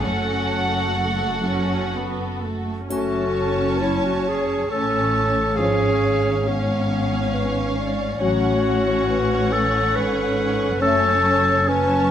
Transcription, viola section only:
0.03 0.90 A3 soft
0.03 0.88 C#4 soft
0.99 1.44 A3 soft
1.47 1.95 C#4 soft
1.95 2.43 B3 soft
2.43 2.91 A3 soft
2.90 4.66 C#4 soft
4.69 5.55 C#4 soft
5.57 6.46 C#4 soft
6.48 8.18 C#4 soft
8.21 10.77 C#4 soft
10.80 11.66 C#4 soft
11.67 12.11 C#4 soft

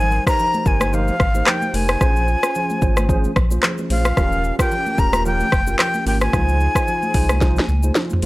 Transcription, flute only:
0.00 0.24 G#5 loud
0.28 0.69 A#5 loud
0.67 0.96 G#5 loud
0.94 1.50 F5 loud
1.48 1.77 G5 loud
1.75 3.37 G#5 loud
3.91 4.56 F5 loud
4.60 5.01 G5 loud
4.99 5.26 A#5 loud
5.27 5.76 G5 loud
5.80 6.05 G5 loud
6.07 6.21 G5 medium
6.22 7.92 G#5 loud

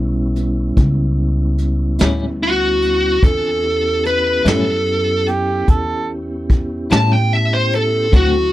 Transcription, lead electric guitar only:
2.43 3.21 F#4 medium
3.24 4.03 A4 medium
4.07 4.45 B4 medium
4.48 5.26 A4 medium
6.92 7.11 A5 medium
7.13 7.32 G5 medium
7.33 7.52 E5 medium
7.54 7.72 C5 medium
7.75 8.13 A4 medium
8.16 8.53 F#4 medium

